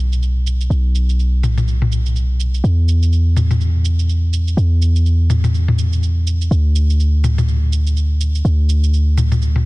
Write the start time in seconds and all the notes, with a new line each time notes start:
Already playing: B1
0.12 shaker
0.23 shaker
0.47 shaker
0.61 shaker
0.70 B1, shaker
0.95 shaker
1.09 shaker
1.19 shaker
1.43 mid tom, shaker
1.58 mid tom, shaker
1.68 shaker
1.82 mid tom
1.92 shaker
2.06 shaker
2.16 shaker
2.40 shaker
2.54 shaker
2.64 E2, shaker
2.88 shaker
3.03 shaker
3.13 shaker
3.37 mid tom, shaker
3.51 mid tom, shaker
3.61 shaker
3.85 shaker
3.99 shaker
4.09 shaker
4.33 shaker
4.48 shaker
4.57 E2, shaker
4.82 shaker
4.96 shaker
5.06 shaker
5.30 mid tom, shaker
5.44 mid tom, shaker
5.54 shaker
5.68 mid tom
5.78 shaker
5.93 shaker
6.03 shaker
6.27 shaker
6.41 shaker
6.51 D2, shaker
6.76 shaker
6.90 shaker
7.00 shaker
7.24 mid tom, shaker
7.38 mid tom, shaker
7.48 shaker
7.73 shaker
7.87 shaker
7.97 shaker
8.21 shaker
8.35 shaker
8.45 D2, shaker
8.69 shaker
8.84 shaker
8.94 shaker
9.18 mid tom, shaker
9.32 mid tom, shaker
9.42 shaker
9.56 mid tom